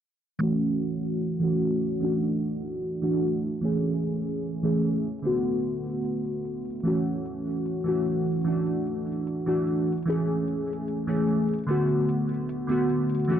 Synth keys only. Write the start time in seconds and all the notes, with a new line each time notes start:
0.39 E3 A3 C#4
0.43 F#4
1.40 E3 A3 C#4 F#4
2.00 E3 A3 D4
2.04 F#4
3.02 E3 A3 D4 F#4
3.61 E3 A3 C#4 G#4
4.63 E3 A3 C#4 G#4
5.22 D3 A3 B3
5.26 F#4
6.83 E3 A3 C#4
6.87 F#4
7.84 E3 A3 C#4
7.88 F#4
8.44 E3 A3 D4 F#4
9.46 E3 A3 D4 F#4
10.06 E3 A3 C#4
10.10 G#4
11.07 E3 A3 C#4 G#4
11.67 D3 A3 B3
11.71 F#4
12.67 D3 A3 B3
12.71 F#4
13.28 E3 A3 C#4 F#4